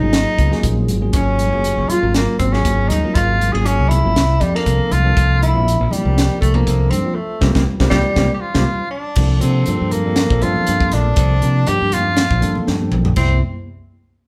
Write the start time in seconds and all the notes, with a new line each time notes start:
Already playing: D#4
0.01 G#1 F#3 A#3 C#4 F4 G#4
0.13 snare, closed hi-hat
0.38 C#2, kick, closed hi-hat, high conga
0.50 F#3 A#3 C#4 F4 G#4, snare, high conga
0.63 A#1, kick, closed hi-hat, low conga
0.78 high conga
0.88 G#1, closed hi-hat, low conga
1.01 F#3 A#3 C#4 F4 G#4
1.13 G#1 C#4, kick, closed hi-hat
1.39 closed hi-hat, low conga
1.52 F#1 F#3 A#3 C#4 F4 G#4, high conga
1.64 closed hi-hat
1.78 F#1
1.89 F4, closed hi-hat, high conga, low conga
2.02 G#1 F#3 A#3 C#4 F4 A#4
2.14 A#3, snare, closed hi-hat
2.39 G#1 C4, kick, closed hi-hat, high conga
2.52 F#3 A#3 C#4 F4 G#4, snare, high conga
2.65 G#1, kick, closed hi-hat
2.89 D#2 D#4, closed hi-hat, low conga
3.03 F#3 A#3 C#4 F4 A#4
3.14 G#1 F4, kick, closed hi-hat
3.40 closed hi-hat, low conga
3.52 G#1 F#3 A#3 C#4 F4 G#4, high conga
3.66 C#4, closed hi-hat
3.79 C2
3.89 E4, closed hi-hat, high conga, low conga
4.04 G#1 F#3 A#3 C#4 F4 A#4
4.16 C2, snare, closed hi-hat
4.41 F2 G3, kick, closed hi-hat, high conga
4.54 F3 A#3 C4 D4 A4, snare
4.66 C2, kick, closed hi-hat
4.91 C2 F4, closed hi-hat, low conga
5.04 F3 A#3 C4 D4 A4
5.17 C2, kick, closed hi-hat
5.41 E4, closed hi-hat, low conga
5.54 A#1 F3 A#3 C4 D4 E4, high conga
5.68 closed hi-hat
5.81 A#1
5.91 G3, muted fingered electric bass stroke, closed hi-hat, high conga, low conga
6.04 C2 F3 A#3 C4 D4 A#4
6.18 snare, closed hi-hat
6.41 C2 A3, kick, closed hi-hat, high conga
6.54 F3 A#3 C4 D4 A4, high conga
6.67 C2, kick, closed hi-hat
6.90 G2 C4, closed hi-hat, low conga
7.04 F3 A#3 C4 D4 F4
7.15 A3
7.41 C2 G3 A#3 C4 F4, kick, snare, low conga
7.55 C2 G3 A#3 C4 F4, kick, snare, low conga
7.80 C2 G3 A#3 C4 F4, kick, snare, low conga
7.90 C2 G3 A#3 C4 F4, kick, snare, low conga
8.16 C2 G3 A#3 C4 F4, kick, snare, low conga
8.34 G4
8.41 F4
8.54 C2 G3 A#3 C4 F4, kick, snare, low conga
8.90 D4
9.15 C2 F3 A#3 C4 D4 A4, kick, crash
9.40 C3 F3 A#3 C4 D4 A4, closed hi-hat
9.66 G2 F3 A#3 C4 D4 A4, closed hi-hat
9.81 G2
9.91 A#3, closed hi-hat, high conga, low conga
10.05 F3 A#3 C4 D4 A4
10.16 snare, closed hi-hat
10.30 A#1 F3 A#3 C4 D4 A4, kick
10.41 G2 F3 A#3 C4 D4 F4 A4, closed hi-hat, high conga
10.56 high conga, low conga
10.67 G2, closed hi-hat
10.80 kick, high conga
10.91 A#1 D4, snare, closed hi-hat, low conga
11.16 C2, kick, closed hi-hat
11.41 C3 F3 A#3 C4 D4 A#4, closed hi-hat
11.66 G2 G4, closed hi-hat
11.82 G2
11.92 F4, closed hi-hat, high conga, low conga
12.16 snare, closed hi-hat
12.31 A#1, kick
12.41 G2 F3 A#3 C4 D4 A4, closed hi-hat
12.55 high conga, low conga
12.67 G2 G5, snare
12.80 high conga
12.92 A#1, mid tom, low conga
13.05 floor tom
13.16 C2 G3 C4 E4, kick, crash, high conga